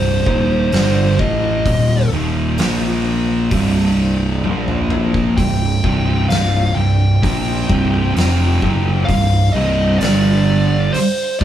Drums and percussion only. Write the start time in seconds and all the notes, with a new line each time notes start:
0.26 kick
0.72 snare, open hi-hat
1.19 kick
1.66 kick, open hi-hat
2.58 snare, open hi-hat
3.51 kick, open hi-hat
4.44 high tom
4.68 mid tom
4.90 mid tom
5.14 kick
5.38 kick, open hi-hat
5.84 kick
6.30 snare, open hi-hat
7.23 kick, open hi-hat
7.70 kick
8.17 snare, open hi-hat
8.62 kick
9.09 kick, open hi-hat
10.01 snare, open hi-hat
10.94 open hi-hat
11.41 kick